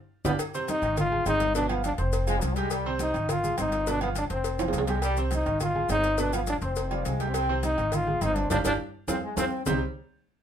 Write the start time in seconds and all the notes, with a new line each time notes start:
0.25 G1 B3 D4 F4 G4, high bongo, low conga, high timbale, maracas
0.39 cowbell, low agogo, maracas
0.54 C3 C4 C5, high conga, maracas
0.68 D#4, cowbell, high conga, low agogo, maracas
0.82 G#1 D#3 D#4 D#5, high conga, low agogo, maracas
0.97 F4, cowbell, high conga, low conga, low agogo, maracas
1.12 G#3 G#4 G#5, high conga, low conga
1.26 G1 C4 D#4 C5 C6, cowbell, high conga, low timbale, low agogo, maracas
1.40 cowbell, high conga, low agogo, maracas
1.55 B2 B3 D4 B4, cowbell, maracas
1.69 F3 B3 F4 F5, low agogo
1.84 D4, cowbell, high conga, low agogo, maracas
1.98 F1 C4 C5 C6, cowbell, high conga, maracas
2.13 cowbell, high conga, low agogo, maracas
2.27 F3 G#3 F4 F5, high conga, low agogo, maracas
2.42 C2 F3, cowbell, high conga, low agogo, maracas
2.56 G3 G#3 G4 G5, cowbell, high conga, low agogo, maracas
2.70 G3, cowbell, high conga, low agogo, maracas
2.85 C3 C4 C5, high conga
2.99 D#4, cowbell, high conga, low agogo, maracas
3.14 G#1 D#3 D#4 D#5, low agogo, maracas
3.29 F4, cowbell, high conga, low conga, low agogo, maracas
3.43 G#3 G#4 G#5, high conga, low conga, maracas
3.58 G1 C4 D#4 C5 C6, cowbell, high conga, low agogo, maracas
3.72 cowbell, low agogo, maracas
3.87 B2 B3 D4 B4, cowbell, high conga, maracas
4.01 F3 B3 F4 F5, high conga, low agogo
4.15 D4, cowbell, high conga, low agogo, maracas
4.30 F1 C4 C5 C6, cowbell, high conga, maracas
4.44 cowbell, high conga, low agogo, maracas
4.59 F3 F4 F5, high timbale, low agogo, maracas
4.68 low timbale
4.73 C2, cowbell, high conga, low agogo, maracas
4.78 low timbale
4.87 G3 G#3 G4 G5, cowbell, high conga, low timbale, low agogo, maracas
5.02 G3, cowbell, high conga, low agogo, maracas
5.17 C3 C4 C5, high conga, maracas
5.31 D#4, cowbell, high conga, low agogo, maracas
5.46 G#1 D#3 D#4 D#5, high conga, low agogo, maracas
5.60 F4, cowbell, high conga, low conga, low agogo, maracas
5.75 G#3 G#4 G#5, high conga, low conga
5.89 G1 C4 D#4 C5 C6, cowbell, high conga, low timbale, low agogo, maracas
6.03 cowbell, low agogo, maracas
6.18 B2 B3 D4 B4, cowbell, maracas
6.32 F3 B3 F4 F5, high conga, low agogo, maracas
6.47 D4, cowbell, high conga, low agogo, maracas
6.62 F1 C4 C5 C6, cowbell, high conga, maracas
6.76 cowbell, high conga, low agogo, maracas
6.90 F3 G3 F4 F5, high conga, low agogo
7.05 C2 G#3, cowbell, high conga, low agogo, maracas
7.20 G3 G4 G5, cowbell, high conga, low agogo, maracas
7.28 C4
7.34 C4, cowbell, high conga, low agogo, maracas
7.49 C3 C4 C5, high conga
7.63 D#4, cowbell, high conga, low agogo, maracas
7.78 G#1 D#3 D#4 D#5, high conga, low agogo, maracas
7.92 F4, cowbell, high conga, low conga, low agogo, maracas
8.07 G#3 G#4 G#5, high conga, low conga
8.21 G1 C4 D#4 C5 C6, cowbell, high conga, low agogo, maracas
8.36 D4, cowbell, high conga, low agogo, maracas
8.50 G1 D4 F4 G4, cowbell, high conga, high timbale, maracas
8.64 G1 D4 F4 G4, cowbell, high conga, high timbale, maracas
9.08 F2 C4 F4 G#4, cowbell, high conga, high timbale, maracas
9.23 G#3
9.37 F2 C4 F4 G#4, cowbell, high conga, high timbale, maracas
9.66 C2 C3 G3 C4 D#4 G4 C5, low bongo, low conga, low timbale, maracas